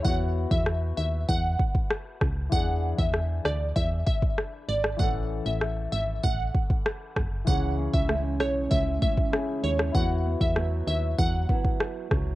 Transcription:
<<
  \new Staff \with { instrumentName = "Synth pluck" } { \time 4/4 \key e \major \tempo 4 = 97 fis''16 r8 e''16 r8 e''16 r16 fis''8. r4 r16 | fis''8 r16 e''8 r16 d''8 e''16 r16 e''16 r8. d''16 r16 | fis''16 r8 e''16 r8 e''16 r16 fis''8. r4 r16 | fis''8 r16 e''8 r16 cis''8 e''16 r16 e''16 r8. cis''16 r16 |
fis''16 r8 e''16 r8 e''16 r16 fis''8. r4 r16 | }
  \new Staff \with { instrumentName = "Grand piano" } { \time 4/4 \key e \major <b e' fis'>1 | <e d' gis'>1 | <e cis' a'>1 | <e cis' gis'>2. <cis' e' gis'>4 |
<b e' fis'>1 | }
  \new Staff \with { instrumentName = "Nylon-string guitar" } { \time 4/4 \key e \major r1 | r1 | r1 | <cis e'>8 cis'8 <gis cis' e'>8 e'8 gis8 <gis cis' e'>4 gis8 |
e'8 b8 <fis b e'>8 e'8 fis8 <fis b e'>4 fis8 | }
  \new Staff \with { instrumentName = "FM bass" } { \clef bass \time 4/4 \key e \major e,8. e,8. dis,8 e,8 r4 cis,8 | e,8. e,8. d,8 e,8 r4 gis,,8 | a,,8. a,,8. gis,,8 a,,8 r4 fis,,8 | cis,8. cis,8. b,,8 cis,8 r4 dis,8 |
e,8. e,8. dis,8 e,8 r4 cis,8 | }
  \new DrumStaff \with { instrumentName = "Drums" } \drummode { \time 4/4 bd8. bd16 ss4 bd8 bd16 bd16 ss8 <bd ss>8 | bd8. bd16 ss8 ss8 bd8 bd16 bd16 ss8. ss16 | bd4 ss4 bd8 bd16 bd16 ss8 <bd ss>8 | bd8. bd16 ss8 ss8 bd8 bd16 bd16 ss8. ss16 |
bd8. bd16 ss4 bd8 bd16 bd16 ss8 <bd ss>8 | }
>>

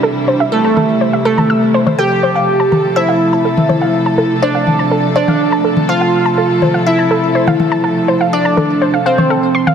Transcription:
<<
  \new Staff \with { instrumentName = "Synth pluck" } { \time 4/4 \key f \lydian \tempo 4 = 123 d''4 a'4. a'4. | g''2 e''2~ | e''4 d''4. d''4. | f''2 e''2~ |
e''4 d''4. c''4. | }
  \new Staff \with { instrumentName = "Synth arpeggio sound" } { \time 4/4 \key f \lydian a'16 r16 c''16 e''16 r16 a''16 a'16 r16 c''16 e''16 a'16 a''16 e'''16 r16 c''16 c''16 | a'16 r16 c''16 f''16 r16 a''16 a'16 r16 c''16 f''16 r16 a''16 a'16 r16 c''16 f''16 | r16 a''16 a'16 r16 c''16 f''16 r16 a''16 a'16 r16 c''16 f''16 r16 a''16 a'16 r16 | c''16 f''16 r16 a''16 a'16 r16 c''16 f''16 r16 a''16 a'16 r16 c''16 f''16 r16 a''16 |
a'16 r16 c''16 f''16 r16 a''16 a'16 r16 c''16 f''16 f''16 c''16 a'16 r16 c'''16 f''16 | }
  \new Staff \with { instrumentName = "Analog polysynth" } { \time 4/4 \key f \lydian d'4 a4. a4. | g'2 e'2~ | e'4 d'4. d'4. | f'2 e'2~ |
e'4 d'4. c'4. | }
  \new Staff \with { instrumentName = "String section" } { \clef bass \time 4/4 \key f \lydian <c e g e'>1 | <c f a a'>1~ | <c f a a'>1~ | <c f a a'>1~ |
<c f a a'>1 | }
  \new DrumStaff \with { instrumentName = "Drums" } \drummode { \time 4/4 r4 r8 toml8 r8. toml16 r8. toml16 | r4 r8 toml8 r4 r16 toml16 toml8 | r4 r8 toml8 r8. toml16 r8. toml16 | r4 r8 toml8 r4 r16 toml16 toml8 |
r4 r8 toml8 r8. toml16 r8. toml16 | }
>>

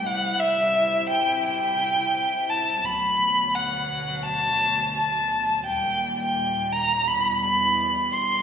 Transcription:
<<
  \new Staff \with { instrumentName = "Violin" } { \time 4/4 \key d \mixolydian \tempo 4 = 85 fis''8 e''4 g''8 g''4. a''8 | b''4 fis''4 a''4 a''4 | g''8. g''8. bes''8 b''8 b''4 c'''8 | }
  \new Staff \with { instrumentName = "String section" } { \clef bass \time 4/4 \key d \mixolydian << { <g e'>1 | fis1 | g1 | } \\ { c1 | <d, b,>1 | <ees, bes,>2 <e, b,>2 | } >> }
>>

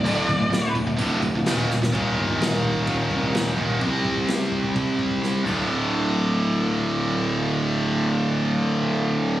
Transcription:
<<
  \new Staff \with { instrumentName = "Lead electric guitar" } { \time 4/4 \key ees \lydian \tempo 4 = 128 d''4. r2 r8 | r1 | r1 | r1 |
r1 | }
  \new Staff \with { instrumentName = "Distorted electric guitar" } { \clef bass \time 4/4 \key ees \lydian <d, a, d>8 <d, a,>16 <d, a,>16 <d, a,>8 <d, a,>16 <d, a,>16 <d, a, d>8 <d, a,>16 <d, a,>16 <ees, bes, ees>8 <ees, bes,>16 <ees, bes,>16 | <ees, bes, ees>2 <ees, bes, ees>2 | <c g c'>2 <c g c'>4. <d, a, d>8~ | <d, a, d>1~ |
<d, a, d>1 | }
  \new Staff \with { instrumentName = "Distorted electric guitar" } { \clef bass \time 4/4 \key ees \lydian <d, a, d>8 <d, a,>16 <d, a,>16 <d, a,>8 <d, a,>16 <d, a,>16 <d, a, d>8 <d, a,>16 <d, a,>16 <ees, bes, ees>8 <ees, bes,>16 <ees, bes,>16 | <ees, bes, ees>2.~ <ees, bes, ees>8 <ees, bes, ees>8 | <c g c'>2.~ <c g c'>8 <d, a, d>8~ | <d, a, d>1~ |
<d, a, d>1 | }
  \new Staff \with { instrumentName = "Picked electric bass" } { \clef bass \time 4/4 \key ees \lydian d,,8 d,,8 d,,8 d,,8 f,,4 ees,,8 ees,,8 | ees,,8 g,,8 ees,,4 ees,,8 c,8 ees,,8 ees,,8 | c,8 c,8 c,8 c,8 c,4 c,8 d,,8~ | d,,1~ |
d,,1 | }
  \new DrumStaff \with { instrumentName = "Drums" } \drummode { \time 4/4 <cymc bd>8 <cymc bd>16 bd16 <cymc sn>8 <cymc bd>16 bd16 <cymc bd>8 <cymc bd>16 bd16 <cymc sn>8 sn16 sn16 | <bd rb>8 bd16 bd16 <rb sn>8 bd16 bd16 <bd rb>8 bd16 bd16 <rb sn>8 bd16 bd16 | <bd rb>8 bd16 bd16 <rb sn>8 bd16 bd16 <bd rb>8 bd16 bd16 sn8 <cymc bd>8 | r4 r4 r4 r4 |
r4 r4 r4 r4 | }
>>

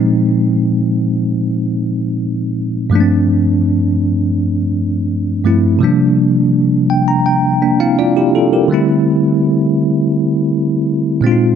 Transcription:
<<
  \new Staff \with { instrumentName = "Tine electric piano" } { \time 4/4 \key g \dorian \tempo 4 = 83 r1 | r1 | r4. g''16 bes''16 g''8 <bes d'>16 <c' e' f''>16 <d' f' d''>16 <e' g'>16 <f' a'>16 <g' bes'>16~ | <g' bes'>16 r2. r8. | }
  \new Staff \with { instrumentName = "Tine electric piano" } { \time 4/4 \key g \dorian <bes, f aes c' ees'>2.~ <bes, f aes c' ees'>8 r8 | <g, f a bes c' d'>2.~ <g, f a bes c' d'>8 <g, f a c' e'>8 | <c f g bes d'>1 | <d g a c' e'>2.~ <d g a c' e'>8 <bes, aes c' d' ees' f'>8 | }
>>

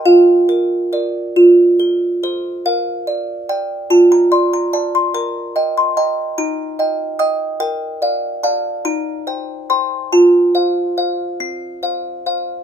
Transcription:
\new Staff \with { instrumentName = "Music box" } { \time 6/8 \key bes \major \tempo 4. = 48 << { f''2~ f''8 r8 | f''4 g''8 a''16 bes''16 c'''16 bes''16 a''16 c'''16 | bes''8. c'''16 bes''8 bes''4 ees'''8 | g''4 a''8 bes''4 c'''8 |
a''2~ a''8 r8 | } \\ { f'8 bes'8 <bes' d''>8 f'8 a'8 <a' c''>8 | bes'8 d''8 d''8 f'8 d''8 d''8 | bes'8 <ees'' g''>8 <ees'' g''>8 ees'8 <ees'' g''>8 <ees'' g''>8 | bes'8 <d'' f''>8 <d'' f''>8 ees'8 <c'' g''>8 <c'' g''>8 |
f'8 <c'' f''>8 <c'' f''>8 c'8 <c'' f''>8 <c'' f''>8 | } >> }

